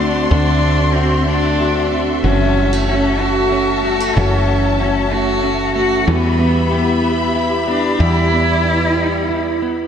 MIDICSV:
0, 0, Header, 1, 6, 480
1, 0, Start_track
1, 0, Key_signature, 1, "minor"
1, 0, Tempo, 641711
1, 238, Time_signature, 6, 3, 24, 8
1, 7386, End_track
2, 0, Start_track
2, 0, Title_t, "String section"
2, 0, Program_c, 0, 48
2, 0, Note_on_c, 0, 66, 74
2, 0, Note_on_c, 0, 74, 62
2, 0, Note_on_c, 0, 84, 83
2, 207, Note_off_c, 0, 74, 0
2, 237, Note_on_c, 0, 76, 69
2, 1650, Note_off_c, 0, 84, 0
2, 1674, Note_on_c, 0, 81, 77
2, 4517, Note_off_c, 0, 66, 0
2, 4517, Note_off_c, 0, 76, 0
2, 4517, Note_off_c, 0, 81, 0
2, 4538, Note_on_c, 0, 83, 82
2, 4540, Note_on_c, 0, 76, 66
2, 4545, Note_on_c, 0, 67, 74
2, 5967, Note_off_c, 0, 76, 0
2, 5986, Note_on_c, 0, 74, 65
2, 7386, Note_off_c, 0, 67, 0
2, 7386, Note_off_c, 0, 74, 0
2, 7386, Note_off_c, 0, 83, 0
2, 7386, End_track
3, 0, Start_track
3, 0, Title_t, "Cello"
3, 0, Program_c, 1, 42
3, 0, Note_on_c, 1, 62, 95
3, 224, Note_off_c, 1, 62, 0
3, 228, Note_on_c, 1, 62, 104
3, 703, Note_on_c, 1, 60, 91
3, 714, Note_off_c, 1, 62, 0
3, 942, Note_off_c, 1, 60, 0
3, 947, Note_on_c, 1, 62, 94
3, 1463, Note_off_c, 1, 62, 0
3, 1666, Note_on_c, 1, 61, 99
3, 2123, Note_off_c, 1, 61, 0
3, 2149, Note_on_c, 1, 61, 96
3, 2391, Note_on_c, 1, 66, 99
3, 2402, Note_off_c, 1, 61, 0
3, 2868, Note_off_c, 1, 66, 0
3, 2872, Note_on_c, 1, 66, 98
3, 3113, Note_on_c, 1, 61, 100
3, 3124, Note_off_c, 1, 66, 0
3, 3592, Note_off_c, 1, 61, 0
3, 3595, Note_on_c, 1, 61, 94
3, 3830, Note_on_c, 1, 66, 101
3, 3841, Note_off_c, 1, 61, 0
3, 4302, Note_off_c, 1, 66, 0
3, 4307, Note_on_c, 1, 66, 97
3, 4554, Note_on_c, 1, 59, 105
3, 4565, Note_off_c, 1, 66, 0
3, 5029, Note_off_c, 1, 59, 0
3, 5033, Note_on_c, 1, 59, 89
3, 5478, Note_off_c, 1, 59, 0
3, 5749, Note_on_c, 1, 62, 90
3, 5983, Note_on_c, 1, 64, 114
3, 5994, Note_off_c, 1, 62, 0
3, 7194, Note_off_c, 1, 64, 0
3, 7386, End_track
4, 0, Start_track
4, 0, Title_t, "Clean electric guitar"
4, 0, Program_c, 2, 27
4, 0, Note_on_c, 2, 57, 57
4, 0, Note_on_c, 2, 60, 61
4, 0, Note_on_c, 2, 66, 68
4, 231, Note_off_c, 2, 57, 0
4, 234, Note_on_c, 2, 57, 80
4, 236, Note_off_c, 2, 66, 0
4, 239, Note_on_c, 2, 66, 67
4, 473, Note_off_c, 2, 57, 0
4, 476, Note_on_c, 2, 57, 60
4, 714, Note_off_c, 2, 66, 0
4, 717, Note_on_c, 2, 66, 64
4, 949, Note_off_c, 2, 57, 0
4, 952, Note_on_c, 2, 57, 60
4, 1188, Note_off_c, 2, 60, 0
4, 1197, Note_on_c, 2, 60, 51
4, 1430, Note_off_c, 2, 57, 0
4, 1433, Note_on_c, 2, 57, 55
4, 1676, Note_off_c, 2, 66, 0
4, 1676, Note_on_c, 2, 52, 74
4, 1679, Note_on_c, 2, 66, 64
4, 1727, Note_off_c, 2, 60, 0
4, 1915, Note_off_c, 2, 57, 0
4, 1918, Note_on_c, 2, 57, 57
4, 2149, Note_off_c, 2, 66, 0
4, 2158, Note_on_c, 2, 66, 56
4, 2389, Note_off_c, 2, 57, 0
4, 2398, Note_on_c, 2, 57, 63
4, 2634, Note_on_c, 2, 61, 52
4, 2867, Note_off_c, 2, 57, 0
4, 2876, Note_on_c, 2, 57, 54
4, 3112, Note_off_c, 2, 66, 0
4, 3114, Note_off_c, 2, 52, 0
4, 3117, Note_on_c, 2, 52, 79
4, 3121, Note_on_c, 2, 66, 64
4, 3342, Note_off_c, 2, 57, 0
4, 3351, Note_on_c, 2, 57, 57
4, 3581, Note_off_c, 2, 66, 0
4, 3590, Note_on_c, 2, 66, 61
4, 3820, Note_off_c, 2, 57, 0
4, 3829, Note_on_c, 2, 57, 64
4, 4054, Note_off_c, 2, 61, 0
4, 4063, Note_on_c, 2, 61, 59
4, 4295, Note_off_c, 2, 57, 0
4, 4304, Note_on_c, 2, 57, 61
4, 4538, Note_off_c, 2, 52, 0
4, 4541, Note_on_c, 2, 55, 82
4, 4543, Note_off_c, 2, 66, 0
4, 4546, Note_on_c, 2, 67, 68
4, 4592, Note_off_c, 2, 61, 0
4, 4593, Note_off_c, 2, 57, 0
4, 4782, Note_on_c, 2, 59, 59
4, 5018, Note_off_c, 2, 67, 0
4, 5021, Note_on_c, 2, 67, 65
4, 5256, Note_off_c, 2, 59, 0
4, 5259, Note_on_c, 2, 59, 64
4, 5497, Note_on_c, 2, 64, 58
4, 5737, Note_off_c, 2, 59, 0
4, 5740, Note_on_c, 2, 59, 59
4, 5975, Note_off_c, 2, 55, 0
4, 5978, Note_on_c, 2, 55, 83
4, 5979, Note_off_c, 2, 67, 0
4, 5982, Note_on_c, 2, 67, 66
4, 6218, Note_off_c, 2, 59, 0
4, 6221, Note_on_c, 2, 59, 56
4, 6457, Note_off_c, 2, 67, 0
4, 6460, Note_on_c, 2, 67, 59
4, 6702, Note_off_c, 2, 59, 0
4, 6705, Note_on_c, 2, 59, 64
4, 6945, Note_off_c, 2, 64, 0
4, 6948, Note_on_c, 2, 64, 54
4, 7194, Note_off_c, 2, 59, 0
4, 7197, Note_on_c, 2, 59, 52
4, 7386, Note_off_c, 2, 55, 0
4, 7386, Note_off_c, 2, 59, 0
4, 7386, Note_off_c, 2, 64, 0
4, 7386, Note_off_c, 2, 67, 0
4, 7386, End_track
5, 0, Start_track
5, 0, Title_t, "Steel-string acoustic guitar"
5, 0, Program_c, 3, 25
5, 0, Note_on_c, 3, 50, 78
5, 0, Note_on_c, 3, 60, 57
5, 0, Note_on_c, 3, 66, 69
5, 223, Note_off_c, 3, 50, 0
5, 232, Note_on_c, 3, 50, 81
5, 466, Note_off_c, 3, 60, 0
5, 475, Note_on_c, 3, 60, 59
5, 711, Note_off_c, 3, 66, 0
5, 714, Note_on_c, 3, 66, 63
5, 945, Note_off_c, 3, 60, 0
5, 954, Note_on_c, 3, 60, 55
5, 1197, Note_off_c, 3, 66, 0
5, 1200, Note_on_c, 3, 66, 57
5, 1430, Note_off_c, 3, 60, 0
5, 1439, Note_on_c, 3, 60, 53
5, 1675, Note_off_c, 3, 50, 0
5, 1679, Note_on_c, 3, 42, 78
5, 1727, Note_off_c, 3, 60, 0
5, 1919, Note_on_c, 3, 55, 53
5, 1941, Note_off_c, 3, 66, 0
5, 2041, Note_off_c, 3, 55, 0
5, 2041, Note_on_c, 3, 57, 47
5, 2161, Note_on_c, 3, 61, 61
5, 2389, Note_off_c, 3, 57, 0
5, 2398, Note_on_c, 3, 57, 54
5, 2623, Note_off_c, 3, 61, 0
5, 2632, Note_on_c, 3, 61, 61
5, 2869, Note_off_c, 3, 57, 0
5, 2872, Note_on_c, 3, 55, 55
5, 2995, Note_off_c, 3, 55, 0
5, 2995, Note_on_c, 3, 57, 49
5, 3107, Note_off_c, 3, 42, 0
5, 3116, Note_on_c, 3, 42, 80
5, 3339, Note_off_c, 3, 57, 0
5, 3348, Note_on_c, 3, 57, 56
5, 3581, Note_off_c, 3, 61, 0
5, 3590, Note_on_c, 3, 61, 63
5, 3818, Note_off_c, 3, 57, 0
5, 3827, Note_on_c, 3, 57, 55
5, 4054, Note_off_c, 3, 61, 0
5, 4063, Note_on_c, 3, 61, 65
5, 4297, Note_off_c, 3, 57, 0
5, 4306, Note_on_c, 3, 57, 59
5, 4543, Note_on_c, 3, 52, 85
5, 4548, Note_off_c, 3, 42, 0
5, 4592, Note_off_c, 3, 61, 0
5, 4594, Note_off_c, 3, 57, 0
5, 4783, Note_on_c, 3, 59, 59
5, 5027, Note_on_c, 3, 64, 62
5, 5264, Note_off_c, 3, 59, 0
5, 5267, Note_on_c, 3, 59, 56
5, 5502, Note_off_c, 3, 64, 0
5, 5505, Note_on_c, 3, 64, 66
5, 5742, Note_off_c, 3, 59, 0
5, 5745, Note_on_c, 3, 59, 58
5, 5984, Note_off_c, 3, 52, 0
5, 5987, Note_on_c, 3, 52, 83
5, 6230, Note_off_c, 3, 59, 0
5, 6233, Note_on_c, 3, 59, 56
5, 6470, Note_off_c, 3, 64, 0
5, 6473, Note_on_c, 3, 64, 59
5, 6706, Note_off_c, 3, 59, 0
5, 6709, Note_on_c, 3, 59, 51
5, 6951, Note_off_c, 3, 64, 0
5, 6954, Note_on_c, 3, 64, 61
5, 7193, Note_off_c, 3, 59, 0
5, 7196, Note_on_c, 3, 59, 53
5, 7386, Note_off_c, 3, 52, 0
5, 7386, Note_off_c, 3, 59, 0
5, 7386, Note_off_c, 3, 64, 0
5, 7386, End_track
6, 0, Start_track
6, 0, Title_t, "Fretless electric bass"
6, 0, Program_c, 4, 35
6, 0, Note_on_c, 4, 38, 110
6, 208, Note_off_c, 4, 38, 0
6, 233, Note_on_c, 4, 38, 110
6, 1646, Note_off_c, 4, 38, 0
6, 1675, Note_on_c, 4, 30, 90
6, 3084, Note_off_c, 4, 30, 0
6, 3117, Note_on_c, 4, 30, 104
6, 4518, Note_off_c, 4, 30, 0
6, 4544, Note_on_c, 4, 40, 103
6, 5954, Note_off_c, 4, 40, 0
6, 5983, Note_on_c, 4, 40, 103
6, 7386, Note_off_c, 4, 40, 0
6, 7386, End_track
0, 0, End_of_file